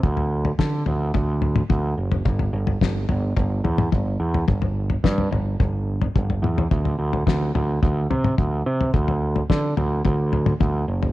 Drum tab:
SD |----o-----------|----o-----------|----o-----------|----o-----------|
T2 |-----------oo---|-----------oo---|------------o-o-|-----------oo---|
FT |oo-o--o-o-oo---o|oo-o--o-o-oo---o|oo-o-oo-o--o-o-o|oo-o--o-o-oo---o|
BD |o---o---o---o---|o---o---o---o---|o---o---o---o---|o---o---o---o---|

SD |----o-----------|
T2 |-----------oo---|
FT |oo-o--o-o-oo---o|
BD |o---o---o---o---|